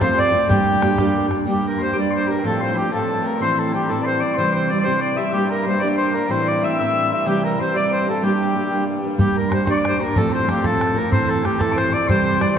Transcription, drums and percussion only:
0.01 bodhran
0.18 bodhran
0.50 bodhran
0.82 bodhran
0.98 bodhran
1.16 bodhran
1.31 bodhran
9.19 bodhran
9.52 bodhran
9.67 bodhran
9.85 bodhran
10.16 bodhran
10.49 bodhran
10.64 bodhran
10.81 bodhran
11.12 bodhran
11.45 bodhran
11.61 bodhran
11.78 bodhran
12.09 bodhran
12.41 bodhran

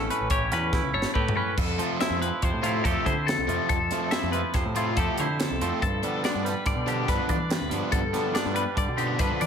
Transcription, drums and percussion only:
0.10 closed hi-hat
0.30 kick, closed hi-hat
0.52 snare, closed hi-hat
0.73 kick, snare
1.02 snare
1.15 kick
1.28 floor tom
1.57 kick, crash
1.79 closed hi-hat
2.01 snare, closed hi-hat
2.22 closed hi-hat
2.42 kick, closed hi-hat
2.64 closed hi-hat
2.85 kick, closed hi-hat
3.06 kick, closed hi-hat
3.28 snare, closed hi-hat
3.49 closed hi-hat
3.69 kick, closed hi-hat
3.91 snare, closed hi-hat
4.11 snare, closed hi-hat
4.33 closed hi-hat
4.54 kick, snare, closed hi-hat
4.76 closed hi-hat
4.97 kick, closed hi-hat
5.18 closed hi-hat
5.40 snare, closed hi-hat
5.61 closed hi-hat
5.82 kick, closed hi-hat
6.03 closed hi-hat
6.24 snare, closed hi-hat
6.46 snare, closed hi-hat
6.66 kick, snare, closed hi-hat
6.88 closed hi-hat
7.08 kick, snare, closed hi-hat
7.29 kick, closed hi-hat
7.50 snare, closed hi-hat
7.71 closed hi-hat
7.92 kick, closed hi-hat
8.14 snare, closed hi-hat
8.35 snare, closed hi-hat
8.56 closed hi-hat
8.77 kick, closed hi-hat
8.98 closed hi-hat
9.19 kick, snare, closed hi-hat
9.41 closed hi-hat

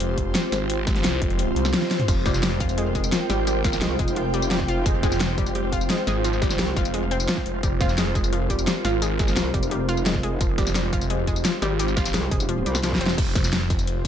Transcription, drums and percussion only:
0.00 closed hi-hat
0.18 kick, closed hi-hat
0.35 snare, closed hi-hat
0.52 snare, closed hi-hat
0.70 closed hi-hat
0.87 kick, snare, closed hi-hat
0.96 snare, closed hi-hat
1.04 snare, closed hi-hat
1.22 kick, closed hi-hat
1.30 closed hi-hat
1.39 closed hi-hat
1.56 closed hi-hat
1.65 snare
1.74 snare, closed hi-hat, high tom
1.82 snare
1.91 snare, closed hi-hat
2.00 closed hi-hat, mid tom
2.08 kick, closed hi-hat, crash, tambourine
2.26 kick, snare, closed hi-hat
2.34 snare, tambourine
2.43 snare, closed hi-hat, tambourine
2.60 kick, closed hi-hat, tambourine
2.69 closed hi-hat, tambourine
2.78 closed hi-hat
2.95 kick, closed hi-hat, tambourine
3.04 tambourine
3.12 snare, closed hi-hat, tambourine
3.30 snare, closed hi-hat
3.47 closed hi-hat, tambourine
3.64 kick, snare, closed hi-hat
3.73 snare, tambourine
3.82 snare, closed hi-hat, tambourine
3.99 kick, closed hi-hat, tambourine
4.08 closed hi-hat, tambourine
4.16 closed hi-hat
4.34 closed hi-hat, tambourine
4.42 tambourine
4.51 snare, closed hi-hat, tambourine
4.60 kick, snare
4.68 closed hi-hat
4.86 kick, closed hi-hat, tambourine
5.03 kick, snare, closed hi-hat
5.12 snare, tambourine
5.20 snare, closed hi-hat, tambourine
5.38 kick, closed hi-hat, tambourine
5.46 closed hi-hat, tambourine
5.55 closed hi-hat
5.72 kick, closed hi-hat, tambourine
5.81 tambourine
5.90 snare, closed hi-hat, tambourine
6.07 snare, closed hi-hat
6.24 closed hi-hat, tambourine
6.33 tambourine
6.42 kick, snare, closed hi-hat
6.50 snare, tambourine
6.59 snare, closed hi-hat, tambourine
6.77 kick, closed hi-hat, tambourine
6.85 closed hi-hat, tambourine
6.94 closed hi-hat
7.11 closed hi-hat, tambourine
7.20 tambourine
7.29 snare, closed hi-hat, tambourine
7.37 kick, snare
7.46 closed hi-hat
7.63 kick, closed hi-hat, tambourine
7.81 kick, snare, closed hi-hat
7.89 snare, tambourine
7.98 snare, closed hi-hat, tambourine
8.15 kick, closed hi-hat, tambourine
8.24 closed hi-hat, tambourine
8.33 closed hi-hat
8.50 kick, closed hi-hat, tambourine
8.59 tambourine
8.67 snare, closed hi-hat, tambourine
8.85 snare, closed hi-hat
9.02 closed hi-hat, tambourine
9.19 kick, snare, closed hi-hat
9.28 snare, tambourine
9.37 snare, closed hi-hat, tambourine
9.54 kick, closed hi-hat, tambourine
9.63 closed hi-hat, tambourine
9.71 closed hi-hat
9.89 closed hi-hat, tambourine
9.97 tambourine
10.06 snare, closed hi-hat, tambourine
10.15 kick, snare
10.23 closed hi-hat
10.41 kick, closed hi-hat, tambourine
10.58 kick, snare, closed hi-hat
10.67 snare, tambourine
10.75 snare, closed hi-hat, tambourine
10.93 kick, closed hi-hat, tambourine
11.01 closed hi-hat, tambourine
11.10 closed hi-hat
11.27 kick, closed hi-hat, tambourine
11.36 tambourine
11.45 snare, closed hi-hat, tambourine
11.62 snare, closed hi-hat
11.79 closed hi-hat, tambourine
11.88 tambourine
11.97 kick, snare, closed hi-hat
12.05 snare, closed hi-hat, tambourine
12.14 snare, closed hi-hat, tambourine
12.31 kick, closed hi-hat, tambourine
12.40 closed hi-hat, tambourine
12.49 closed hi-hat
12.66 closed hi-hat, tambourine
12.75 snare, tambourine
12.83 snare, closed hi-hat, tambourine
12.92 kick, snare
13.01 closed hi-hat
13.07 snare, closed hi-hat, tambourine
13.18 kick, closed hi-hat, tambourine, crash
13.35 kick, snare, closed hi-hat
13.44 snare, tambourine
13.53 snare, closed hi-hat, tambourine
13.70 kick, closed hi-hat, tambourine
13.79 closed hi-hat, tambourine
13.87 closed hi-hat

